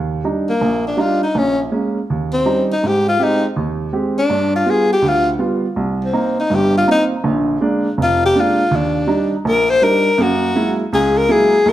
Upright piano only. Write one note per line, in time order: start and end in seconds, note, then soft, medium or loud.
0.00 0.20 D#2 medium
0.24 0.50 G3 medium
0.24 0.50 D4 soft
0.24 0.50 D#4 medium
0.61 0.93 A#1 medium
0.97 1.23 G3 medium
0.97 1.23 D4 medium
0.97 1.23 D#4 medium
1.35 1.67 A#1 medium
1.72 1.97 G#3 medium
1.72 1.97 A#3 soft
1.72 1.97 C#4 medium
2.10 2.41 D#2 medium
2.46 2.71 G3 medium
2.46 2.71 C#4 soft
2.46 2.71 D#4 medium
2.84 3.15 G#2 medium
3.19 3.45 G#3 medium
3.19 3.45 C4 medium
3.19 3.45 G4 medium
3.56 3.88 D#2 medium
3.93 4.18 G#3 medium
3.93 4.18 C4 medium
3.93 4.18 G4 medium
4.30 4.61 G2 medium
4.66 4.92 G3 medium
4.66 4.92 B3 medium
4.66 4.92 F4 medium
5.02 5.34 D2 medium
5.39 5.65 G3 medium
5.39 5.65 B3 medium
5.39 5.65 F4 medium
5.76 6.08 C2 medium
6.13 6.39 A#3 medium
6.13 6.39 C4 medium
6.13 6.39 D#4 medium
6.50 6.82 G1 medium
6.50 6.82 G2 medium
6.87 7.13 A#3 medium
6.87 7.13 C4 medium
6.87 7.13 D#4 medium
7.24 7.56 A#1 medium
7.24 7.56 D3 medium
7.61 7.86 G#3 medium
7.61 7.86 A#3 medium
7.61 7.87 D4 medium
7.98 8.30 F1 medium
8.35 8.60 G#3 medium
8.35 8.60 A#3 medium
8.35 8.61 D4 medium
8.71 9.03 D#2 medium
9.07 9.33 G3 medium
9.07 9.33 D4 medium
9.07 9.33 D#4 medium
9.45 9.77 A#1 medium
9.82 10.07 G3 medium
9.82 10.07 D4 medium
9.82 10.08 D#4 medium
10.18 10.50 F#2 medium
10.18 10.50 A#3 medium
10.55 10.81 F#3 medium
10.55 10.81 G#3 medium
10.55 10.81 A#3 medium
10.55 10.81 E4 medium
10.93 11.24 C#2 medium
11.29 11.54 F#3 medium
11.29 11.54 G#3 medium
11.29 11.54 A#3 medium
11.29 11.54 E4 medium
11.66 11.72 B1 medium